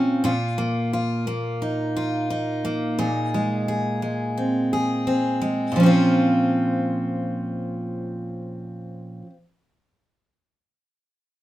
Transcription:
0.00 0.23 A#2 medium
0.00 0.31 C4 medium
0.00 0.31 C#4 medium
0.00 0.24 F4 medium
0.24 2.97 A#2 medium
0.24 0.92 F4 medium
0.58 1.26 A#3 medium
0.93 1.95 F4 medium
1.27 2.63 A#3 soft
1.62 2.30 D#4 soft
1.96 2.99 F4 medium
2.30 4.37 D#4 soft
2.65 3.07 A#3 medium
2.99 5.70 A#2 medium
2.99 3.67 G#4 medium
3.34 4.01 G#3 soft
3.68 4.72 G#4 soft
4.02 5.40 G#3 soft
4.37 5.07 C4 soft
4.73 5.84 G#4 medium
5.07 5.83 C4 soft
5.42 5.79 G#3 soft
5.72 9.22 A#2 medium
5.76 9.26 F3 medium
5.76 9.30 C#4 medium
5.83 9.33 C4 medium
5.83 9.36 F4 medium

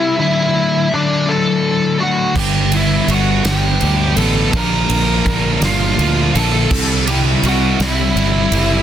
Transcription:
0.00 0.17 C3 medium
0.00 0.17 G3 medium
0.00 0.17 C4 medium
0.00 0.14 E4 medium
0.00 0.16 E4 medium
0.00 0.20 E5 loud
0.18 0.90 D3 loud
0.18 0.57 F#3 loud
0.18 0.55 A3 loud
0.18 0.54 D4 loud
0.18 0.87 E4 medium
0.18 0.94 E5 loud
0.54 0.91 F#3 medium
0.54 0.92 A3 medium
0.54 0.94 D4 medium
0.91 1.30 D3 medium
0.91 1.28 F#3 medium
0.91 1.27 A3 medium
0.91 1.26 D4 medium
0.91 1.27 D4 medium
0.95 1.30 D5 medium
1.27 2.34 D3 medium
1.27 2.02 F#3 medium
1.27 2.00 A3 medium
1.27 1.98 D4 loud
1.27 1.96 A4 medium
1.31 2.03 A5 loud
1.99 2.34 A3 medium
1.99 2.38 D4 medium
1.99 2.34 F#4 medium
2.03 2.35 F#3 medium
2.03 2.39 F#5 medium
2.35 3.00 G1 loud
2.35 3.08 G2 loud
2.35 3.06 D3 loud
2.35 2.74 G3 loud
2.35 2.73 B3 loud
2.35 2.71 D4 loud
2.35 2.70 G4 medium
2.35 kick loud
2.35 crash loud
2.39 2.75 G5 loud
2.71 3.08 G3 medium
2.71 3.09 B3 medium
2.71 3.11 D4 medium
2.71 3.07 E4 medium
2.71 ride medium
2.77 3.12 E5 medium
3.07 3.40 G1 medium
3.07 3.45 D3 medium
3.07 3.45 G3 medium
3.07 3.44 B3 medium
3.07 3.42 D4 medium
3.07 3.43 F#4 medium
3.07 ride medium
3.14 3.47 F#5 medium
3.44 3.77 G1 loud
3.44 4.52 G2 medium
3.44 4.52 D3 medium
3.44 4.19 G3 medium
3.44 4.18 B3 medium
3.44 4.16 D4 loud
3.44 4.13 G4 medium
3.44 snare loud
3.44 ride loud
3.48 4.19 G5 loud
3.81 4.14 D2 loud
3.81 4.51 D3 medium
3.81 4.18 G3 medium
3.81 4.17 B3 medium
3.81 4.15 D4 medium
3.81 ride medium
4.17 4.49 A1 medium
4.17 4.53 G3 medium
4.17 4.52 B3 medium
4.17 4.51 D4 medium
4.17 4.50 A4 medium
4.17 4.55 A5 loud
4.17 ride medium
4.53 4.85 A#1 loud
4.53 5.25 A#2 loud
4.53 5.25 D3 medium
4.53 4.92 F3 loud
4.53 4.91 A#3 loud
4.53 4.89 D4 loud
4.53 5.60 A#4 medium
4.53 kick loud
4.53 ride loud
4.59 5.68 A#5 loud
4.89 5.22 A#1 medium
4.89 5.26 F3 medium
4.89 5.27 A#3 medium
4.89 5.29 D4 medium
4.89 ride medium
5.25 5.58 A#1 medium
5.25 5.65 D3 medium
5.25 5.63 F3 medium
5.25 5.63 A#3 medium
5.25 kick medium
5.25 ride medium
5.30 5.61 D4 medium
5.62 5.94 G1 loud
5.62 6.37 F3 medium
5.62 6.36 A#3 medium
5.62 6.34 D4 medium
5.62 6.32 F4 medium
5.62 snare loud
5.62 ride loud
5.66 6.71 A#2 medium
5.66 6.70 D3 medium
5.66 6.39 F5 medium
5.97 6.30 D2 loud
5.97 6.68 D3 medium
5.97 6.35 F3 medium
5.97 6.34 A#3 medium
5.97 6.33 D4 medium
5.97 ride medium
6.35 6.67 A#1 loud
6.35 6.71 F3 medium
6.35 6.70 A#3 medium
6.35 6.69 D4 medium
6.35 7.04 A4 medium
6.35 ride medium
6.39 7.10 A5 loud
6.70 7.35 C2 loud
6.70 7.43 C3 loud
6.70 7.11 G3 loud
6.70 7.08 C4 loud
6.70 kick loud
6.70 crash loud
6.74 7.07 E4 loud
7.07 7.45 G3 medium
7.07 7.45 C4 medium
7.07 7.46 E4 medium
7.07 7.17 G4 medium
7.07 7.20 G5 medium
7.07 ride medium
7.43 7.75 C2 medium
7.43 7.83 C3 medium
7.43 7.82 G3 medium
7.43 7.81 C4 medium
7.43 7.79 F#4 medium
7.43 ride medium
7.47 7.79 E4 medium
7.47 7.80 F#5 medium
7.80 8.12 C2 loud
7.80 8.56 G3 medium
7.80 8.53 C4 loud
7.80 8.51 E4 loud
7.80 8.82 E4 medium
7.80 8.82 E5 medium
7.80 snare loud
7.80 ride loud
7.84 8.82 C3 medium
8.15 8.48 G1 medium
8.15 8.82 C3 medium
8.15 8.54 G3 medium
8.15 8.52 C4 medium
8.15 8.50 E4 medium
8.15 ride medium
8.51 8.82 F#1 loud
8.51 8.82 C4 medium
8.51 8.82 E4 medium
8.51 ride medium
8.56 8.82 G3 medium

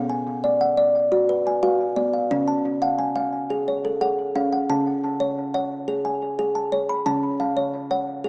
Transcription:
0.00 2.27 B2 medium
0.00 0.27 B3 medium
0.00 0.10 F5 medium
0.10 0.61 G#5 medium
0.44 0.76 D5 medium
0.61 1.12 F#5 medium
0.77 1.12 D5 medium
1.12 1.46 F#4 medium
1.29 1.80 B4 medium
1.47 1.98 G#5 medium
1.63 1.97 F#4 medium
1.63 2.12 F5 medium
1.96 2.31 B3 medium
1.96 2.48 D5 medium
2.13 2.48 F5 medium
2.31 4.65 C#3 medium
2.31 2.65 C#4 medium
2.48 2.99 A5 medium
2.82 3.14 F5 medium
2.82 3.33 F#5 medium
2.99 3.50 G#5 medium
3.16 3.50 F5 medium
3.50 3.84 G#4 medium
3.68 4.18 C#5 medium
3.85 4.35 A4 medium
4.01 4.35 G#4 medium
4.01 4.51 F#5 medium
4.36 4.68 C#4 medium
4.36 4.86 F5 medium
4.53 4.86 F#5 medium
4.69 7.03 C#3 medium
4.69 5.03 C#4 medium
4.69 5.20 A5 medium
5.20 5.53 C#5 medium
5.54 5.88 C#5 medium
5.54 6.05 F#5 medium
5.88 6.22 G#4 medium
6.05 6.56 G#5 medium
6.39 6.73 G#4 medium
6.55 7.05 A5 soft
6.72 7.06 C#5 medium
6.89 7.40 B5 medium
7.06 8.29 C#3 medium
7.06 7.40 C#4 medium
7.06 7.57 A5 medium
7.40 7.91 F5 medium
7.57 7.90 C#5 medium
7.91 8.25 C#5 medium
7.91 8.29 F#5 medium
8.24 8.29 G#4 medium

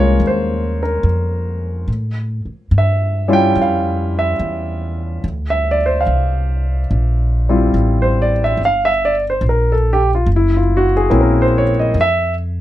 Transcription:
0.00 0.17 C2 medium
0.00 0.16 G#3 medium
0.00 0.17 A#3 medium
0.00 0.17 C#4 medium
0.00 0.17 F4 medium
0.00 0.83 A#4 medium
0.00 0.21 C#5 medium
0.20 1.01 D#2 medium
0.27 0.79 C5 medium
0.83 1.06 A#4 medium
1.03 1.85 F2 medium
1.88 2.41 A2 medium
2.45 muted upright bass stroke soft
2.71 3.53 G2 medium
2.78 3.30 E5 medium
3.28 3.52 G3 medium
3.28 3.53 C#4 medium
3.28 3.53 E4 medium
3.28 3.53 F4 medium
3.33 3.57 G5 medium
3.55 4.37 F2 medium
3.62 4.14 F5 medium
4.19 4.33 E5 medium
4.39 5.21 E2 medium
5.24 6.05 D2 medium
5.50 5.79 E5 medium
5.71 5.74 D5 medium
5.86 6.01 C5 medium
6.01 6.79 F5 medium
6.07 6.88 C2 medium
6.91 7.72 A#1 medium
7.49 7.73 G3 medium
7.49 7.73 C4 medium
7.49 7.73 E4 medium
7.49 7.73 F4 medium
7.74 8.56 A1 medium
8.02 8.31 C5 medium
8.22 8.40 D5 medium
8.44 8.58 E5 medium
8.57 9.40 G1 medium
8.65 8.90 F5 medium
8.85 9.14 E5 medium
9.05 9.23 D5 medium
9.30 9.43 C5 medium
9.41 10.23 A#1 medium
9.49 9.74 A#4 medium
9.72 10.00 A4 medium
9.93 10.09 G4 medium
10.15 10.27 F4 medium
10.26 11.08 F#1 medium
10.36 10.60 E4 medium
10.57 10.84 F4 medium
10.77 10.93 F#4 medium
10.97 11.10 G#4 medium
11.10 11.93 A#1 medium
11.10 11.62 A#3 medium
11.10 11.62 C4 medium
11.10 11.62 C#4 medium
11.10 11.62 E4 medium
11.21 11.44 A#4 medium
11.42 11.69 C5 medium
11.58 11.76 C#5 medium
11.79 11.93 D#5 medium
11.94 12.61 F2 medium
12.01 12.33 E5 medium

